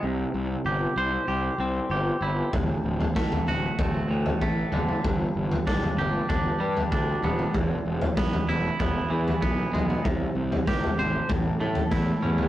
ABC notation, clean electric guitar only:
X:1
M:4/4
L:1/8
Q:1/4=96
K:Dmix
V:1 name="Clean electric guitar"
C,2 G c G C G E | D,,2 A, F A, A,, A, D, | G,,2 D G D G, D B, | E,,2 B, E B, E, B, ^G, |
C,2 G c A,, A, E ^C |]